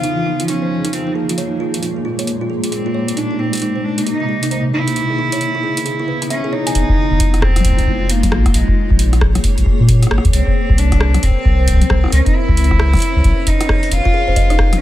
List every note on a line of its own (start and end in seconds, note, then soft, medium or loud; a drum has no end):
0.00 1.14 F3 medium
0.00 1.14 D#4 medium
0.00 0.17 D#4 medium
0.00 0.48 F4 loud
0.00 1.14 G#4 medium
0.00 closed hi-hat soft
0.17 0.21 F4 medium
0.26 0.36 D#4 medium
0.40 0.44 F4 medium
0.40 closed hi-hat medium
0.48 0.95 C#4 loud
0.48 0.61 D#4 medium
0.48 closed hi-hat soft
0.62 0.66 C5 medium
0.84 0.93 D#4 medium
0.84 closed hi-hat medium
0.93 1.17 C4 medium
0.93 0.99 F4 medium
0.93 closed hi-hat soft
1.07 1.13 D#4 medium
1.15 3.15 A#2 medium
1.15 3.15 G#3 medium
1.15 3.15 A#3 medium
1.15 1.83 A#3 medium
1.15 1.22 G#4 medium
1.29 1.37 F4 medium
1.29 closed hi-hat medium
1.38 1.44 C#5 medium
1.38 closed hi-hat soft
1.60 1.73 F4 medium
1.74 1.78 G#4 medium
1.74 closed hi-hat medium
1.83 1.93 F4 medium
1.83 closed hi-hat soft
1.96 2.00 G#4 medium
2.05 2.18 F4 medium
2.19 2.23 C#5 medium
2.19 closed hi-hat medium
2.27 closed hi-hat soft
2.41 2.49 F4 medium
2.50 2.56 G#4 medium
2.64 2.70 F4 medium
2.64 closed hi-hat medium
2.72 3.18 C4 medium
2.72 2.78 G#4 medium
2.72 closed hi-hat soft
2.86 2.94 F4 medium
2.94 3.01 C#5 medium
3.08 closed hi-hat medium
3.17 4.94 C3 medium
3.17 4.94 A#3 medium
3.17 3.41 D4 medium
3.17 4.94 D#4 medium
3.17 3.30 D#4 loud
3.17 closed hi-hat soft
3.31 3.35 G4 medium
3.39 3.86 C4 medium
3.39 3.50 D#4 medium
3.53 3.57 G4 medium
3.53 closed hi-hat medium
3.55 closed hi-hat soft
3.57 closed hi-hat soft
3.60 3.75 D#4 loud
3.60 closed hi-hat soft
3.62 closed hi-hat soft
3.75 3.79 C5 medium
3.84 4.06 D4 medium
3.98 4.06 D#4 loud
3.98 closed hi-hat medium
4.06 4.48 D#4 loud
4.06 4.13 G4 medium
4.06 closed hi-hat soft
4.20 4.27 D#4 medium
4.29 4.35 G4 medium
4.43 4.51 D#4 loud
4.43 closed hi-hat medium
4.51 4.61 D#4 loud
4.51 4.58 C5 medium
4.51 closed hi-hat soft
4.74 4.87 D#4 loud
4.74 6.26 E4 loud
4.88 4.91 G4 medium
4.88 closed hi-hat medium
4.96 6.73 C#3 medium
4.96 6.73 B3 medium
4.96 6.73 E4 medium
4.96 5.07 E4 medium
4.96 closed hi-hat soft
5.10 5.14 G#4 medium
5.18 5.32 E4 loud
5.32 5.36 C#5 medium
5.32 closed hi-hat medium
5.41 closed hi-hat soft
5.55 5.63 E4 loud
5.63 5.70 G#4 medium
5.77 5.84 E4 medium
5.77 closed hi-hat medium
5.86 5.92 G#4 medium
5.86 closed hi-hat soft
5.99 6.08 E4 medium
6.08 6.19 B4 medium
6.22 6.30 B5 medium
6.22 closed hi-hat medium
6.30 6.54 C#4 loud
6.30 6.44 E5 loud
6.30 closed hi-hat soft
6.44 6.48 G#4 medium
6.53 7.44 D#4 loud
6.53 6.63 C#5 loud
6.67 6.73 G#5 medium
6.67 closed hi-hat medium
6.75 6.84 F1 loud
6.75 8.30 G#3 medium
6.75 8.30 D#4 medium
6.75 8.30 F4 medium
6.75 closed hi-hat medium
6.89 kick loud
7.11 7.59 F1 loud
7.20 kick loud
7.20 closed hi-hat medium
7.34 cross-stick medium
7.34 closed hi-hat soft
7.42 8.11 C4 loud
7.42 kick loud
7.42 cross-stick loud
7.49 kick medium
7.56 kick medium
7.56 cross-stick medium
7.56 closed hi-hat medium
7.60 kick medium
7.60 high tom medium
7.65 kick loud
7.65 closed hi-hat medium
7.69 kick loud
7.72 kick medium
7.79 kick medium
7.79 closed hi-hat soft
7.84 8.33 F1 medium
7.84 kick soft
7.87 kick loud
8.09 8.56 A#3 loud
8.09 closed hi-hat medium
8.23 kick loud
8.23 closed hi-hat medium
8.23 high tom medium
8.32 8.48 A#1 medium
8.32 10.31 A#3 medium
8.32 10.31 G#4 medium
8.32 10.31 C#5 loud
8.32 cross-stick loud
8.32 high tom medium
8.46 kick loud
8.46 cross-stick medium
8.46 closed hi-hat soft
8.54 8.63 A#1 loud
8.54 8.99 G#3 medium
8.54 closed hi-hat medium
8.68 kick loud
8.90 9.39 A#1 loud
8.90 kick loud
8.99 closed hi-hat medium
9.13 cross-stick medium
9.13 closed hi-hat soft
9.21 kick loud
9.21 cross-stick loud
9.35 cross-stick medium
9.35 closed hi-hat medium
9.35 high tom medium
9.44 kick loud
9.44 closed hi-hat medium
9.58 9.63 A#1 medium
9.58 closed hi-hat soft
9.66 kick loud
9.80 10.06 A#2 loud
9.89 kick loud
9.89 closed hi-hat medium
10.03 cross-stick soft
10.03 closed hi-hat medium
10.07 cross-stick soft
10.11 10.20 G#1 medium
10.11 cross-stick loud
10.18 cross-stick medium
10.25 10.30 D#2 medium
10.25 kick loud
10.25 closed hi-hat soft
10.33 10.42 C2 loud
10.33 12.11 C4 medium
10.33 10.80 C4 medium
10.33 12.11 A#4 medium
10.33 12.11 C5 medium
10.33 closed hi-hat medium
10.47 kick loud
10.70 11.18 C2 loud
10.70 kick loud
10.78 11.25 D4 loud
10.78 closed hi-hat medium
10.92 kick loud
10.92 cross-stick medium
10.92 closed hi-hat soft
11.01 cross-stick loud
11.14 cross-stick medium
11.14 closed hi-hat medium
11.14 high tom medium
11.23 12.12 C4 loud
11.23 kick loud
11.23 closed hi-hat medium
11.28 kick loud
11.30 kick medium
11.45 11.85 C2 medium
11.45 kick loud
11.68 kick medium
11.68 closed hi-hat medium
11.70 kick medium
11.73 kick medium
11.76 kick medium
11.79 kick loud
11.79 closed hi-hat medium
11.79 high tom medium
11.90 12.06 C2 medium
11.90 kick loud
11.90 cross-stick loud
11.90 high tom medium
12.04 cross-stick medium
12.06 cross-stick medium
12.08 cross-stick soft
12.10 12.21 C#2 loud
12.10 13.90 C#4 medium
12.10 12.25 C#4 loud
12.10 13.90 B4 medium
12.10 13.90 C#5 medium
12.10 cross-stick soft
12.10 closed hi-hat medium
12.26 12.36 D#4 loud
12.26 kick loud
12.26 closed hi-hat soft
12.35 13.49 E4 loud
12.49 12.97 C#2 loud
12.49 kick loud
12.57 closed hi-hat medium
12.64 closed hi-hat soft
12.71 kick loud
12.71 cross-stick medium
12.79 cross-stick loud
12.93 kick loud
12.93 cross-stick soft
12.93 closed hi-hat soft
12.93 high tom medium
12.95 closed hi-hat soft
12.97 closed hi-hat soft
12.99 closed hi-hat soft
13.00 closed hi-hat soft
13.02 closed hi-hat medium
13.16 13.21 C#2 medium
13.24 13.33 B1 medium
13.24 kick loud
13.24 closed hi-hat soft
13.47 13.93 D#4 loud
13.47 kick loud
13.47 closed hi-hat medium
13.61 cross-stick medium
13.61 closed hi-hat medium
13.69 kick loud
13.69 cross-stick loud
13.83 closed hi-hat soft
13.91 14.00 F1 loud
13.91 14.82 D#4 medium
13.91 14.82 F4 medium
13.91 14.81 F4 loud
13.91 14.82 G#4 medium
13.91 closed hi-hat medium
14.05 14.12 F4 loud
14.05 kick loud
14.14 14.24 G#4 loud
14.28 14.76 F1 loud
14.28 14.34 C5 loud
14.36 14.43 D#5 loud
14.36 kick loud
14.36 closed hi-hat medium
14.50 14.54 D#4 loud
14.50 cross-stick medium
14.50 closed hi-hat soft
14.59 14.69 D#4 medium
14.59 kick loud
14.59 cross-stick loud
14.73 cross-stick medium
14.73 closed hi-hat soft
14.73 high tom medium